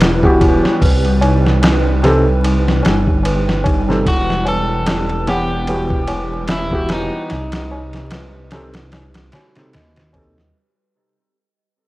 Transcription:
Already playing: detuned saw bass E1, synth texture G3, ambient pad G3 B4, celesta E4 B4
0.01 celesta E4, snare, ride, tabla na
0.22 felt piano E3 B3 F#4 G4, kick, tabla na
0.41 celesta E4, kick, ride, tabla na
0.63 snare, tabla na
0.81 detuned saw bass C2, celesta B4, kick, open hi-hat, tabla na
1.04 ride, tabla na
1.21 celesta D#4, ride, tabla na
1.44 snare, tabla na
1.62 celesta D#4, snare, ride, tabla na
1.84 tabla na
2.02 felt piano C3 C4 D#4 A4, celesta B4, snare, ride, tabla na
2.26 tabla na
2.43 celesta D#4, ride, tabla na
2.66 snare, tabla na
2.83 detuned saw bass G1, celesta D#4, snare, ride, tabla na
3.06 kick, tabla na
3.23 celesta B4, ride, tabla na
3.47 snare, tabla na
3.64 celesta D#4, kick, ride, tabla na
3.88 felt piano C3 C4 D#4 A4, snare, tabla na
4.05 detuned saw bass E1, celesta E4, clean electric guitar F#4, kick, ride, tabla na
4.28 snare, tabla na
4.45 clean electric guitar A4, celesta B4, ride, tabla na
4.69 tabla na
4.86 celesta E4, snare, ride, tabla na
5.09 ride, tabla na
5.27 felt piano E3 B3 G4 F#5, celesta E4, clean electric guitar G4, snare, ride, tabla na
5.51 tabla na
5.67 felt piano E3 B3 F#4 G4, celesta B4, ride, tabla na
5.90 kick, tabla na
6.07 detuned saw bass E1, celesta E4, ride, tabla na
6.32 tabla na
6.48 celesta E4, clean electric guitar E4, snare, ride, tabla na
6.71 felt piano E3 B3 F#4 G4, kick, tabla na
6.89 clean electric guitar D#4, celesta B4, snare, ride, tabla na
7.30 detuned saw bass C2, celesta D#4, snare, ride, tabla na
7.52 snare, ride, tabla na
7.71 celesta D#4, tabla na
7.93 snare, ride, tabla na
8.11 celesta B4, snare, ride, tabla na
8.34 tabla na
8.51 felt piano C3 C4 D#4 A4, celesta D#4, snare, ride, tabla na
8.74 snare, ride, tabla na
8.92 celesta D#4, snare, ride, tabla na
9.14 snare, ride
9.32 celesta F#4, snare, ride, tabla na
9.55 felt piano C3 C4 D#4 A4, snare, ride, tabla na
9.73 detuned saw bass D#2, celesta D#5, snare, ride, tabla na
9.96 snare, ride, tabla na
10.13 felt piano C3 C4 D#4 A4, celesta B4, kick, ride, tabla na
10.37 snare, tabla na

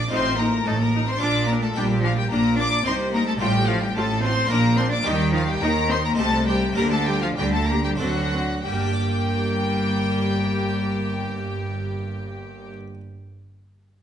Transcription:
Already playing: violin section D5 D6
0.08 double bass section A1, harpsichord A2 D#4 F4, cello C4, viola section D#4, violin section C6
0.12 cello section A2, violin section C5
0.37 cello A#3, viola section D#4, violin section A#4 A#5
0.62 harpsichord A2, cello A3, violin section A5
0.67 double bass section A1, cello section A2, viola section D#4, violin section A4
0.78 cello A#3, violin section A#4 A#5
0.95 viola section D#4
1.05 cello C4, violin section C5 C6
1.18 harpsichord A#2 D4 F4, cello D4, violin section D6
1.22 double bass section A#1, cello section A#2, viola section D4, violin section D5
1.47 cello A#3, violin section A#4 A#5
1.51 viola section D4
1.60 cello A3, violin section A5
1.64 violin section A4
1.74 double bass section A#1, harpsichord A#2 D4, cello section A#2, cello G3, viola section D4, violin section G4 G5
2.00 cello F3, viola section D4, violin section F4 F5
2.16 cello G3, violin section G4 G5
2.29 double bass section A#1, harpsichord A#2, cello section A#2, cello A#3, viola section D4, violin section A#4 A#5
2.56 cello D4, viola section D4, violin section D5 D6
2.83 double bass section C2, harpsichord C3 C4 D#4, cello section C3, cello C4, viola section D#4, violin section C5 C6
3.11 cello A#3, viola section D#4, violin section A#4 A#5
3.24 cello A3, violin section A4 A5
3.38 double bass section A1, cello section A2, harpsichord A2 C4 F4, cello G3, viola section F4, violin section G4 G5
3.67 cello F3, viola section F4, violin section F4 F5
3.79 cello G3, violin section G4 G5
3.93 double bass section A1, cello section A2, harpsichord A2, cello A3, viola section F4, violin section A4 A5
4.21 cello C4, viola section F4, violin section C5 C6
4.46 harpsichord A#3 D4 F4, cello A#3, violin section A#5
4.50 double bass section A#1, cello section A#2, harpsichord A#2, viola section D4, violin section A#4
4.76 cello C4, viola section D4, violin section C5 C6
4.89 cello D4, violin section D5 D6
5.02 double bass section D#2, cello G3, harpsichord A#3 D#4 G4, violin section G4
5.06 cello section D#3, harpsichord D#3, viola section D#4, violin section G5
5.31 cello F3, viola section D#4, violin section F4 F5
5.47 cello G3, violin section G4 G5
5.61 double bass section D#2, harpsichord D#3, cello section D#3, cello A#3, viola section D#4, violin section A#4 A#5
5.88 cello C4, viola section D#4, violin section C5 C6
6.03 cello A#3, violin section A#4 A#5
6.14 cello A3, harpsichord C4 D#4 G4
6.18 double bass section C2, cello section C3, harpsichord C3, viola section G4, violin section A4 A5
6.45 cello G3, violin section G4 G5, viola section G4
6.73 cello section D3, harpsichord A#3 D4 G4, cello A#3, violin section A#4 A#5
6.77 double bass section D2, harpsichord D3, viola section G4
6.91 cello A3, violin section A4 A5
7.05 cello G3, violin section G4 G5, viola section G4
7.21 cello F3, violin section F4 F5
7.36 double bass section D2, harpsichord D3, cello section D3, cello G3, violin section G4 G5, viola section G4
7.52 cello A3, violin section A4 A5
7.67 cello A#3, viola section G4, violin section A#4 A#5
7.83 cello G3, violin section G4 G5
7.96 cello F#3, harpsichord C4 D4 A4, violin section F#4 F#5
8.00 double bass section D2, harpsichord D3, cello section D3, viola section C4
8.33 viola section C4
8.64 double bass section G1, cello section G2, cello G3, harpsichord G3, viola section A#3, violin section G4 G5
8.72 harpsichord A#3
8.79 harpsichord D4
8.86 harpsichord G4
8.93 harpsichord D5

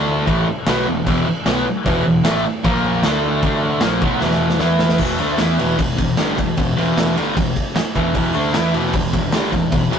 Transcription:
Already playing: picked electric bass D2, distorted electric guitar D3 A3 D4
0.27 picked electric bass A1, distorted electric guitar A2 E3 A3, kick, crash
0.47 muted distorted electric guitar stroke
0.67 picked electric bass B1, distorted electric guitar B2 F#3 B3, snare, crash
0.87 picked electric bass E1, distorted electric guitar E2 B2
1.06 picked electric bass E1, distorted electric guitar E2 B2 E3, kick, crash
1.27 muted distorted electric guitar stroke, muted picked electric bass stroke
1.45 picked electric bass B1, distorted electric guitar B2 F#3 B3, snare, crash
1.66 muted distorted electric guitar stroke, muted picked electric bass stroke
1.85 picked electric bass E1, distorted electric guitar E2 B2 E3, kick, crash
2.04 picked electric bass E1, distorted electric guitar E2 B2
2.24 picked electric bass A1, distorted electric guitar A2 E3 A3, snare, crash
2.44 muted distorted electric guitar stroke, muted picked electric bass stroke
2.64 picked electric bass A#1, distorted electric guitar A#2 F3 A#3, kick, crash
3.03 picked electric bass D2, distorted electric guitar D3 A3 D4, snare, crash
3.43 picked electric bass D2, distorted electric guitar D3 A3 D4, kick, crash
3.81 picked electric bass A#1, distorted electric guitar A#2 F3 A#3, snare, crash
4.02 picked electric bass B1, distorted electric guitar B2 F#3 B3, kick
4.21 picked electric bass E1, distorted electric guitar E2 B2 E3, snare
4.31 snare
4.50 snare
4.59 picked electric bass E2, distorted electric guitar E3 B3 E4, snare
4.79 snare
4.89 snare
4.98 picked electric bass E1, distorted electric guitar E2 B2 E3, kick, crash
5.19 picked electric bass D2, distorted electric guitar D3 A3 D4, ride
5.38 picked electric bass E2, distorted electric guitar E3 B3 E4, snare, ride
5.59 picked electric bass E1, distorted electric guitar E2 B2 E3, ride
5.77 picked electric bass E1, distorted electric guitar E2 B2, kick, ride
5.97 picked electric bass E1, distorted electric guitar E2 B2, kick, ride
6.17 picked electric bass G1, distorted electric guitar G2 D3 G3, snare, ride
6.36 picked electric bass E1, distorted electric guitar E2 B2, kick, ride
6.57 picked electric bass E1, distorted electric guitar E2 B2, kick, ride
6.77 picked electric bass E1, distorted electric guitar E2 B2 E3, ride
6.98 snare, ride
7.16 picked electric bass G1, distorted electric guitar G2 D3 G3, ride
7.36 picked electric bass E1, distorted electric guitar E2 B2, kick, ride
7.56 kick, ride
7.75 muted distorted electric guitar stroke, muted picked electric bass stroke, snare, ride
7.95 picked electric bass E1, distorted electric guitar E2 B2 E3, kick, ride
8.14 picked electric bass E1, distorted electric guitar E2 B2 E3, kick, ride
8.33 picked electric bass D2, distorted electric guitar D3 A3 D4, ride
8.54 picked electric bass E2, distorted electric guitar E3 B3 E4, snare, ride
8.73 picked electric bass E1, distorted electric guitar E2 B2 E3, ride
8.93 distorted electric guitar E2 B2, kick, ride
9.13 picked electric bass E1, distorted electric guitar E2 B2, kick, ride
9.32 picked electric bass G1, distorted electric guitar G2 D3 G3, snare, ride
9.52 picked electric bass E1, distorted electric guitar E2 B2, kick, ride
9.72 picked electric bass E1, distorted electric guitar E2 B2, kick, ride
9.91 picked electric bass E1, distorted electric guitar E2 B2 E3, ride

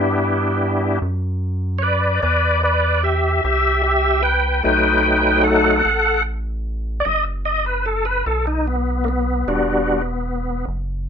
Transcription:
Already playing: analog synth bass G2, tonewheel organ B3 D4 E4 G4
1.02 analog synth bass F#2
1.79 tonewheel organ B4 C#5
1.83 tonewheel organ D5
2.23 analog synth bass E2, tonewheel organ B4 D5
2.63 tonewheel organ B4 D5
3.03 tonewheel organ G4 E5
3.44 analog synth bass C2, tonewheel organ G4 E5
3.84 tonewheel organ G4 E5
4.22 tonewheel organ B4 G5
4.63 analog synth bass B1, tonewheel organ F#3 A3 D#4 B4 G5
5.03 tonewheel organ B4 G5
5.43 tonewheel organ A4 F#5
5.85 analog synth bass A1
7.00 tonewheel organ D5
7.05 analog synth bass F#1, tonewheel organ D#5
7.45 tonewheel organ D#5
7.66 tonewheel organ B4
7.86 tonewheel organ A4
8.05 tonewheel organ B4
8.26 analog synth bass B1, tonewheel organ A4
8.47 tonewheel organ D#4
8.67 tonewheel organ B3
9.04 tonewheel organ A#3
9.08 tonewheel organ B3
9.47 analog synth bass E1, tonewheel organ G3 D4 F#4
10.68 analog synth bass F#1

